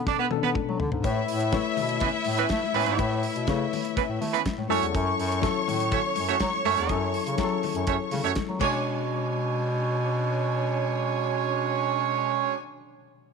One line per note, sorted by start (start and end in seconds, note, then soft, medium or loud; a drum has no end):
0.00 0.31 B2 medium
0.00 0.31 B3 medium
0.00 0.31 C#4 medium
0.00 0.37 D4 medium
0.00 0.32 A4 loud
0.06 0.17 D4 loud
0.06 0.17 D5 loud
0.06 kick loud
0.06 snare medium
0.06 muted conga soft
0.19 0.28 B3 loud
0.19 0.26 B3 medium
0.19 0.26 B4 medium
0.31 0.81 B2 medium
0.31 0.81 B3 medium
0.31 0.37 C#4 medium
0.31 0.81 A4 medium
0.31 high tom medium
0.31 muted conga medium
0.31 low conga medium
0.37 0.84 D4 medium
0.43 0.50 B3 medium
0.43 0.53 B3 loud
0.43 0.51 B4 loud
0.43 high tom medium
0.55 kick loud
0.55 mid tom medium
0.55 high conga medium
0.69 0.77 F#3 medium
0.69 high conga medium
0.80 0.89 D3 loud
0.80 floor tom loud
0.92 1.01 G#2 medium
0.92 floor tom loud
1.03 1.22 A2 loud
1.03 1.37 A3 medium
1.03 1.37 E4 medium
1.03 4.41 E4 medium
1.03 1.37 B4 medium
1.03 1.38 C#5 medium
1.03 4.41 E5 loud
1.03 kick loud
1.03 closed hi-hat medium
1.28 1.57 A2 loud
1.28 open hi-hat medium
1.40 closed hi-hat soft
1.52 2.19 A3 medium
1.52 2.19 E4 medium
1.52 2.19 B4 medium
1.52 2.20 C#5 loud
1.52 kick loud
1.52 snare loud
1.52 closed hi-hat medium
1.52 high conga medium
1.77 2.05 B2 medium
1.77 open hi-hat medium
1.77 muted conga medium
1.77 low conga loud
1.89 closed hi-hat medium
2.00 2.09 E3 medium
2.00 2.09 B3 medium
2.00 2.09 C#4 medium
2.00 2.09 B4 medium
2.00 kick loud
2.00 closed hi-hat medium
2.00 muted conga soft
2.00 low conga medium
2.25 2.45 A2 loud
2.25 open hi-hat medium
2.25 muted conga medium
2.38 2.46 E3 loud
2.38 2.46 B3 loud
2.38 2.46 C#4 loud
2.38 2.46 B4 loud
2.38 closed hi-hat medium
2.49 2.60 A3 loud
2.49 kick loud
2.49 snare loud
2.49 closed hi-hat medium
2.49 high conga medium
2.63 high conga medium
2.74 2.84 A2 medium
2.74 2.95 E3 loud
2.74 2.95 B3 loud
2.74 2.95 C#4 loud
2.74 2.95 B4 loud
2.74 open hi-hat medium
2.74 high conga medium
2.86 2.96 G#2 medium
2.86 closed hi-hat medium
2.98 3.26 A2 loud
2.98 3.32 A3 medium
2.98 3.32 E4 medium
2.98 3.32 B4 medium
2.98 3.33 C#5 medium
2.98 kick loud
2.98 closed hi-hat medium
3.23 open hi-hat medium
3.36 3.45 B2 medium
3.36 closed hi-hat medium
3.47 3.66 C#3 loud
3.47 4.15 A3 medium
3.47 4.15 E4 medium
3.47 4.15 B4 medium
3.47 4.15 C#5 loud
3.47 kick loud
3.47 snare loud
3.47 closed hi-hat medium
3.47 high conga medium
3.73 open hi-hat medium
3.73 muted conga medium
3.73 low conga medium
3.85 closed hi-hat medium
3.97 4.05 E3 medium
3.97 4.04 B3 medium
3.97 4.05 C#4 medium
3.97 4.04 B4 medium
3.97 kick loud
3.97 closed hi-hat medium
3.97 muted conga soft
4.09 4.18 A2 medium
4.21 4.39 A3 loud
4.21 open hi-hat medium
4.21 muted conga medium
4.21 low conga medium
4.33 4.41 E3 loud
4.33 4.41 B3 loud
4.33 4.41 C#4 loud
4.33 4.41 B4 loud
4.33 closed hi-hat medium
4.46 kick loud
4.46 snare loud
4.46 closed hi-hat medium
4.46 high conga medium
4.57 4.67 A2 medium
4.57 high conga medium
4.69 4.79 F#2 medium
4.69 5.28 F#3 medium
4.69 4.86 A3 loud
4.69 5.28 C#4 medium
4.69 4.86 C#4 loud
4.69 5.29 E4 medium
4.69 4.86 F#4 loud
4.69 5.29 A4 loud
4.69 8.33 C#5 loud
4.69 4.86 C#5 loud
4.69 8.33 C#6 loud
4.69 open hi-hat medium
4.69 high conga medium
4.82 4.91 E2 medium
4.82 closed hi-hat medium
4.95 5.13 F#2 loud
4.95 kick loud
4.95 closed hi-hat medium
5.19 5.46 F#2 loud
5.19 open hi-hat medium
5.32 closed hi-hat medium
5.42 6.09 F#3 medium
5.42 6.09 C#4 medium
5.42 6.10 E4 medium
5.42 6.10 A4 medium
5.42 kick loud
5.42 snare loud
5.42 closed hi-hat medium
5.42 high conga medium
5.68 5.95 A2 loud
5.68 open hi-hat medium
5.68 muted conga medium
5.68 low conga medium
5.80 closed hi-hat medium
5.91 6.00 A3 medium
5.91 6.00 C#4 medium
5.91 6.00 F#4 medium
5.91 6.00 C#5 medium
5.91 kick loud
5.91 closed hi-hat medium
5.91 muted conga soft
5.91 low conga medium
6.16 6.35 F#2 medium
6.16 open hi-hat medium
6.16 muted conga medium
6.28 6.37 A3 loud
6.28 6.36 C#4 loud
6.28 6.36 F#4 loud
6.28 6.36 C#5 loud
6.28 closed hi-hat soft
6.40 6.50 F#3 loud
6.40 kick loud
6.40 snare loud
6.40 closed hi-hat medium
6.40 high conga medium
6.54 high conga medium
6.65 6.75 F#2 medium
6.65 6.96 A3 loud
6.65 6.96 C#4 loud
6.65 6.96 F#4 loud
6.65 6.96 C#5 loud
6.65 open hi-hat medium
6.65 high conga medium
6.77 6.87 E2 loud
6.77 closed hi-hat soft
6.89 7.17 F#2 loud
6.89 7.23 F#3 medium
6.89 7.23 C#4 medium
6.89 7.23 E4 medium
6.89 7.24 A4 medium
6.89 kick loud
6.89 closed hi-hat medium
7.14 open hi-hat medium
7.27 7.36 C#3 medium
7.27 closed hi-hat medium
7.37 8.05 F#3 medium
7.37 7.57 F#3 medium
7.37 8.05 C#4 medium
7.37 8.05 E4 medium
7.37 7.45 G#4 medium
7.37 kick loud
7.37 snare loud
7.37 closed hi-hat medium
7.37 high conga medium
7.44 8.08 A4 medium
7.63 open hi-hat medium
7.63 muted conga medium
7.63 low conga medium
7.75 7.84 F#2 loud
7.75 closed hi-hat medium
7.87 7.97 F#2 loud
7.87 7.96 A3 medium
7.87 7.96 C#4 medium
7.87 7.96 F#4 medium
7.87 7.96 C#5 loud
7.87 kick loud
7.87 closed hi-hat medium
7.87 muted conga soft
8.11 8.21 C#3 loud
8.11 open hi-hat medium
8.11 muted conga medium
8.11 low conga medium
8.24 8.33 F#2 medium
8.24 8.32 A3 medium
8.24 8.32 C#4 loud
8.24 8.32 F#4 loud
8.24 8.32 C#5 loud
8.24 closed hi-hat soft
8.35 kick loud
8.35 snare loud
8.35 closed hi-hat medium
8.35 high conga medium
8.48 8.57 F#3 medium
8.48 high conga medium
8.59 12.52 B2 medium
8.59 12.55 B2 loud
8.59 12.54 G#3 medium
8.59 12.54 C#4 loud
8.59 12.56 D4 medium
8.59 12.54 F#4 medium
8.59 12.54 C#5 loud
8.59 12.55 C#5 medium
8.59 12.55 G#5 loud
8.59 kick loud
8.59 crash medium
8.59 muted conga medium
8.65 12.58 C#5 medium